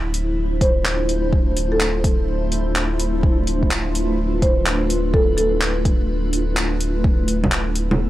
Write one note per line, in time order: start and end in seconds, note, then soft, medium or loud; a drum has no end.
0.00 7.03 D1 medium
0.00 7.00 A3 medium
0.00 7.00 D4 medium
0.00 7.00 E4 medium
0.00 7.00 F4 medium
0.00 3.19 C5 medium
0.14 closed hi-hat medium
0.61 0.87 C5 medium
0.61 kick loud
0.61 closed hi-hat medium
0.85 clap loud
0.85 closed hi-hat soft
1.09 closed hi-hat medium
1.33 kick loud
1.57 closed hi-hat medium
1.72 2.20 A4 medium
1.80 clap loud
2.04 kick loud
2.04 closed hi-hat medium
2.52 closed hi-hat medium
2.76 clap loud
2.76 closed hi-hat soft
3.00 closed hi-hat medium
3.23 7.00 B4 medium
3.23 kick loud
3.47 closed hi-hat medium
3.63 kick medium
3.71 clap loud
3.95 closed hi-hat medium
4.42 4.68 C5 medium
4.42 kick loud
4.42 closed hi-hat medium
4.66 clap loud
4.66 closed hi-hat soft
4.90 closed hi-hat medium
5.14 5.36 A4 medium
5.14 kick loud
5.37 5.85 A4 medium
5.37 closed hi-hat medium
5.61 clap loud
5.85 kick loud
5.85 closed hi-hat soft
6.33 closed hi-hat medium
6.57 clap loud
6.57 closed hi-hat soft
6.81 closed hi-hat medium
7.04 8.10 D1 medium
7.04 8.10 B3 medium
7.04 8.10 E4 medium
7.04 8.10 A4 medium
7.04 kick loud
7.28 closed hi-hat medium
7.44 kick medium
7.44 low bongo soft
7.52 clap loud
7.75 closed hi-hat medium
7.91 low bongo medium